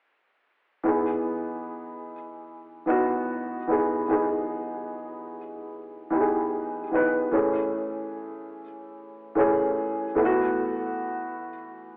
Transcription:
upright piano
0.83 E3 B3 D#4 G#4
2.86 E3 B3 D#4 F#4
3.67 E3 B3 D#4 G#4
4.08 E3 B3 D#4 G#4
6.10 E3 B3 D#4 G4
6.20 G#4
6.91 E3 B3 D#4
6.95 B4
7.31 E3 A3 C#4 G#4
9.35 E3 A3 C#4 G#4
10.15 E3 A3 B3 E4
10.25 F#4

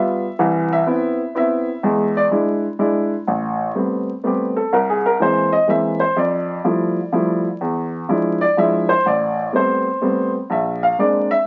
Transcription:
upright piano
Already playing: G3 B3 F4 E5
0.39 C2 E3
0.73 E5
0.86 B3 C4 E4
1.35 B3 C4 E4 E5
1.83 E2 G#3
2.17 D5
2.31 G#3 D4 E4
2.79 G#3 D4 E4
3.27 A1
3.75 G3 A3 B3 C4
4.24 G3 A3 B3 C4 G4
4.57 A4
4.73 C2 A#4
4.90 G#4
5.06 A#4
5.20 E3 G#3 A#3 C4 C5
5.52 D#5
5.68 E3 G#3 A#3 C4 E5
6.00 C5
6.16 F2 D5
6.64 F3 G3 A3 E4
7.12 F3 G3 A3 E4
7.61 E2
8.09 F3 G#3 D4 E4
8.41 D5
8.57 F3 G#3 D4 E4 E5
8.89 C5
9.06 A1 D5
9.53 G3 A3 B3 C4 C5
10.01 G3 A3 B3 C4
10.50 A#1 E5
10.83 F5
10.99 G#3 A#3 C4 D4 D5
11.31 E5

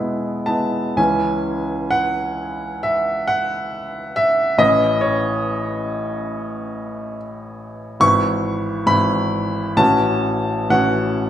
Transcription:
grand piano
Already playing: B2 G#3 B3 E4
0.46 G#3 B3 E4 A5
0.96 C#2 E3 C#4 E4 G#5
1.91 F#5
2.83 E5
3.28 F#5
4.16 E5
4.58 A1 E3 C#4 E4 D#5
5.01 C#5
8.00 G#1 E3 E4 C#6
8.86 G#1 E3 E4 B5
9.77 A1 E3 C#4 F#4 A5
10.69 A1 E3 C#4 F#4 F#5

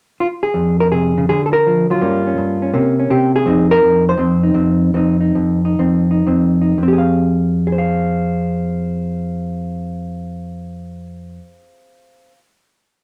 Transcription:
hollow-body jazz guitar
0.20 F4
0.43 G#4
0.54 F2
0.80 A#4
0.91 C3 G#4
1.18 C#3
1.29 D3 G#4
1.46 A4
1.53 A#4
1.67 F3
1.90 F#3 F4
2.01 G2 A#3 C#4
2.27 C#4
2.38 G2
2.62 C#4
2.74 C3 A#3 C#4
2.99 C#4
3.10 C3 G4
3.36 G#4
3.46 F2 C4 D#4
3.71 A#4
3.82 F2
4.09 C5
4.17 F2 C4
4.43 D#4
4.54 F2 C4
4.94 F2 C4 D#4
5.21 D#4
5.35 F2
5.65 D#4
5.79 F2 C4
6.11 D#4
6.27 F2 C4
6.61 D#4
6.78 F2
6.83 C4
6.88 G4
6.93 G#4
6.98 F5
7.67 G#4
7.72 C5
7.78 F5

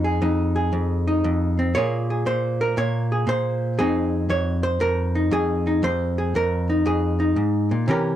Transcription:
hollow-body jazz guitar
Already playing: F2 D#4
0.04 G#4
0.22 F2 D#4
0.56 G#4
0.73 F2
1.07 D#4
1.24 F2
1.59 C4
1.75 A#2 A#3 F4 G#4 C#5
2.10 G#4
2.26 A#2 C5
2.61 A#4
2.77 A#2 C#5
3.12 G#4
3.27 A#2 C5
3.79 F2 C4 D#4 G#4
4.30 F2 C#5
4.63 C5
4.80 F2 A#4
5.15 D#4
5.31 F2 G#4
5.67 D#4
5.83 F2 C5
6.18 G#4
6.35 F2 A#4
6.70 D#4
6.86 F2 G#4
7.20 D#4
7.36 G#2
7.71 A#2
7.88 C3 E3 C#4 G4 A#4

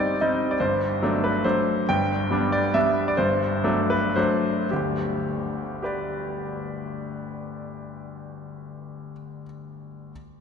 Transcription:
grand piano
Already playing: G3 C4 D#4 D5
0.21 G3 C4 D#4 D#5
0.51 D5
0.60 G1 G2 C5
1.02 F#3 A3 D4
1.24 B4
1.44 F#3 A3 D4 C5
1.89 G1 G2 G5
2.31 G3 B3 D4
2.52 D5
2.74 G3 B3 D4 E5
3.08 D5
3.17 G1 G2 C5
3.64 F#3 A3 D4
3.90 B4
4.16 F#3 A3 D4 C5
4.71 G1 D2 G4
5.82 G4 B4 D5

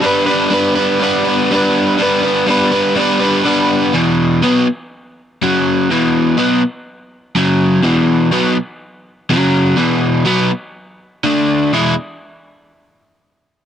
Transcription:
overdriven electric guitar
0.02 G3 B3 D4
0.06 B4
0.26 B3 B4
0.30 D4
0.50 G3 B3 D4 B4
0.75 B3 B4
0.79 D4
0.99 G3 B3 D4 B4
1.24 B3 B4
1.28 D4
1.51 G3 B3 D4
1.55 B4
1.98 G3 B3 D4
2.03 B4
2.22 B3 B4
2.26 D4
2.47 G3 B3 D4
2.51 B4
2.71 B3 B4
2.76 D4
2.95 G3 B3 D4
2.99 B4
3.19 B3 B4
3.24 D4
3.44 G3 B3 D4 B4
3.93 E2 B2 E3
4.42 B2 F#3 B3
5.42 F#2 C#3 F#3
5.90 E2 B2 E3
6.37 B2 F#3 B3
7.35 F#2 C#3 F#3
7.82 E2 B2 E3
8.31 B2 F#3 B3
9.30 F#2 C#3 F#3
9.77 E2 B2 E3
10.25 B2 F#3 B3
11.24 D3 A3 D4
11.73 E2 B2 E3 G#3 B3 E4

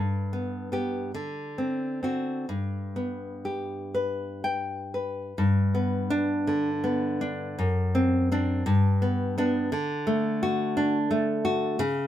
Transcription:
nylon-string guitar
Already playing: G2
0.33 B3
0.72 B3 G4
1.14 D3
1.58 C4
2.03 C4 F#4
2.49 G2
2.96 B3
3.45 G4
3.94 B4
4.44 G5
4.94 B4
5.38 G2
5.75 B3
6.10 D4
6.47 D3
6.84 B3
7.21 D4
7.59 F#2
7.95 C4
8.32 C4 D4
8.66 G2
9.02 B3
9.38 B3 D4
9.72 D3
10.07 A3
10.43 F#4
10.77 D4
11.11 A3
11.45 F#4
11.79 C#3

